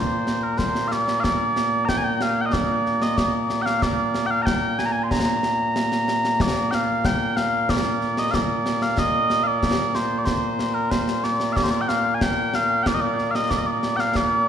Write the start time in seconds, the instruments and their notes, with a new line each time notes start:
Already playing: bagpipes A#2 A#3 C5
0.27 snare
0.43 bagpipes A#4
0.58 bagpipes C5, concert bass drum, snare
0.75 snare
0.88 bagpipes F5, snare
0.92 bagpipes D5
1.08 snare
1.20 bagpipes D5 F5
1.24 concert bass drum, snare
1.56 snare
1.85 bagpipes G5 A#5, concert bass drum, snare
1.98 bagpipes G#5
2.04 bagpipes G5
2.15 bagpipes G5
2.21 bagpipes F5, snare
2.41 bagpipes G5
2.46 bagpipes D#5
2.53 bagpipes D5, concert bass drum, snare
2.86 snare
3.02 bagpipes D#5, snare
3.17 bagpipes D5, concert bass drum, snare
3.50 snare
3.62 bagpipes F5 G5
3.66 snare
3.82 bagpipes D5, concert bass drum, snare
4.14 snare
4.26 bagpipes G5
4.31 bagpipes F5
4.42 bagpipes G5 A#5
4.47 concert bass drum, snare
4.79 bagpipes G#5, snare
4.86 bagpipes A#5
4.92 bagpipes G#5
5.03 bagpipes C6
5.11 bagpipes A#5, concert bass drum, snare
5.43 snare
5.76 snare
5.92 snare
6.08 snare
6.25 snare
6.40 bagpipes D5, concert bass drum, snare
6.71 bagpipes F5 G5, snare
7.05 bagpipes G5, concert bass drum, snare
7.36 bagpipes F5, snare
7.69 bagpipes D5, concert bass drum, snare
8.01 snare
8.17 bagpipes D#5, snare
8.31 bagpipes D5 F5, concert bass drum, snare
8.66 snare
8.82 bagpipes F5, snare
8.97 bagpipes D#5, concert bass drum, snare
9.30 snare
9.43 bagpipes D5 F5
9.63 concert bass drum, snare
9.95 bagpipes C5, snare
10.19 bagpipes D5
10.25 bagpipes C5, concert bass drum, snare
10.59 snare
10.74 bagpipes A#4
10.91 bagpipes C5, concert bass drum, snare
11.08 snare
11.24 bagpipes D5, snare
11.40 snare
11.53 bagpipes D5 F5, concert bass drum, snare
11.63 bagpipes C5
11.71 bagpipes D5
11.81 bagpipes G5
11.88 bagpipes F5, snare
12.14 bagpipes G#5
12.21 bagpipes G5, concert bass drum, snare
12.54 bagpipes F5, snare
12.83 bagpipes D5 G5, concert bass drum, snare
12.95 bagpipes D#5
13.01 bagpipes D5
13.18 snare
13.31 bagpipes F5
13.35 bagpipes D#5, snare
13.51 bagpipes D5, concert bass drum, snare
13.59 bagpipes D#5
13.67 bagpipes D5
13.83 snare
13.96 bagpipes F5 G5, snare
14.15 bagpipes D5, concert bass drum, snare